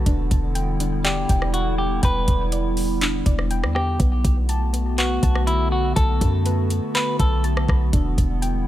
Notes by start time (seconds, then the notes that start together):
Already playing: D3
0.06 E1 G3 B3 D4 E4, kick, closed hi-hat
0.31 E1, kick, closed hi-hat
0.55 G5, closed hi-hat
0.80 D4, closed hi-hat
1.04 G4 D5, clap, closed hi-hat
1.29 E1 G5, kick, closed hi-hat
1.42 cross-stick
1.54 F#4, closed hi-hat
1.78 G4
2.03 E1 B4 G5, kick, closed hi-hat
2.28 E1, kick, closed hi-hat
2.52 D5, closed hi-hat
2.77 open hi-hat
3.01 D4, clap, closed hi-hat
3.26 E1 D5, kick, closed hi-hat
3.39 cross-stick
3.51 G5, closed hi-hat
3.63 E2, cross-stick
3.75 G4, cross-stick
3.99 B1 D3 A3 B3 F#4, kick, closed hi-hat
4.25 B1, kick, closed hi-hat
4.49 A5, closed hi-hat
4.73 B3, closed hi-hat
4.98 F#4 B4, clap, closed hi-hat
5.23 B1 A5, kick, closed hi-hat
5.35 cross-stick
5.47 E4, closed hi-hat
5.72 F#4
5.96 B1 A4 A5, kick, closed hi-hat
6.21 F#2, kick, closed hi-hat
6.46 B4, closed hi-hat
6.70 closed hi-hat
6.94 B3 B4, clap, closed hi-hat
7.19 B1 A4 B4, kick, closed hi-hat
7.44 A5, closed hi-hat
7.57 cross-stick
7.68 B1, kick, cross-stick
7.93 E1 D3 G3 D4 E4, kick, closed hi-hat
8.18 E1, kick, closed hi-hat
8.42 G5, closed hi-hat